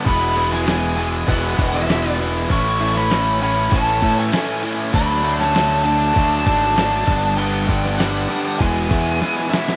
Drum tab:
CC |x-x-x-x-x-x-x-x-|x-x-x-x-x-x-x-x-|x-x-x-x-x-x-x-x-|x-x-x-x-x-x-----|
SD |---oo-------o---|---oo-------o---|---oo-------o---|---oo---------oo|
T1 |----------------|----------------|----------------|------------o---|
BD |o-------o-o-----|o-------o-o-----|o-------o-o---o-|--o-----o-o-----|